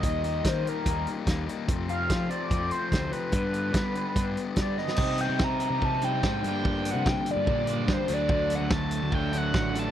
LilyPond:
<<
  \new Staff \with { instrumentName = "Analog synth lead" } { \time 4/4 \key ees \lydian \tempo 4 = 145 ees''4 c''8 bes'4 r4. | r8 f''4 d''4 c''8 c''8 b'8~ | b'2~ b'8 r8 d''8 ees''8~ | \key c \dorian ees''8 g''8 bes''8 bes''8 a''8 g''4 g''8~ |
g''8 fis''8 g''8 d''8 d''4 c''8 d''8~ | d''8 fis''8 a''8 a''8 g''8 fis''4 a''8 | }
  \new Staff \with { instrumentName = "Overdriven electric guitar" } { \time 4/4 \key ees \lydian r1 | r1 | r1 | \key c \dorian <g c' ees'>2~ <g c' ees'>8 <g c' ees'>8 <g c' ees'>8 <g bes d'>8~ |
<g bes d'>2 <g bes d'>8 <g bes d'>4 <fis a d'>8~ | <fis a d'>2 <fis a d'>8 <fis a d'>4 <fis a d'>8 | }
  \new Staff \with { instrumentName = "Distorted electric guitar" } { \time 4/4 \key ees \lydian <ees g bes ees'>8 <g bes ees'>8 <ees g bes ees'>8 <g bes ees'>4. <ees g bes ees'>8 <g bes ees'>8 | <f, c f a c'>8 <f a c'>8 <c f a c'>8 <f a c'>4. <f, c f a c'>8 <f a c'>8 | <g, d g b d'>8 <g b d'>8 <d g b d'>8 <g b d'>4. <g, d g b d'>8 <g b d'>8 | \key c \dorian <c g c' ees' g'>2.~ <c g c' ees' g'>8 <g, d g bes d'>8~ |
<g, d g bes d'>2.~ <g, d g bes d'>8 <d fis a d'>8~ | <d fis a d'>2.~ <d fis a d'>8 <d fis a d'>8 | }
  \new Staff \with { instrumentName = "Picked electric bass" } { \clef bass \time 4/4 \key ees \lydian ees,4 ees8 r8 ees,8 r8 ees,8 r8 | f,4 f8 r8 f,8 r8 d,8 r8 | g,4 g8 r8 g,8 r8 g8 r8 | \key c \dorian c8. c4 c16 c4 aes,8 g,8~ |
g,8. c8 r8 g,16 bes,4 g,16 r16 d,8~ | d,8. d,4 d,16 d,4 a,,4 | }
  \new DrumStaff \with { instrumentName = "Drums" } \drummode { \time 4/4 <hh bd>8 hh8 <hh bd sn>8 hh8 <hh bd>8 hh8 <hh bd sn>8 hh8 | <hh bd>8 hh8 <hh bd sn>8 hh8 <hh bd>8 hh8 <hh bd sn>8 hh8 | <hh bd>8 hh8 <hh bd sn>8 hh8 <hh bd>8 hh8 <hh bd sn>8 sn16 sn16 | <cymc bd>8 hh8 <bd sn>8 hh8 bd8 hh8 <bd sn>8 hh8 |
bd8 hh8 <bd sn>8 hh8 bd8 hh8 <bd sn>8 hh8 | bd8 hh8 <bd sn>8 hh8 bd8 hh8 <bd sn>8 hh8 | }
>>